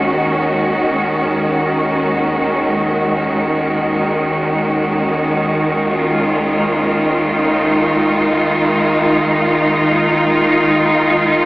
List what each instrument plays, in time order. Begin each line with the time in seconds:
Already playing: synth drone D#2 D#3, cello section D#3 G#3 C#4 F#4
5.82 cello section F4
7.29 cello section D#4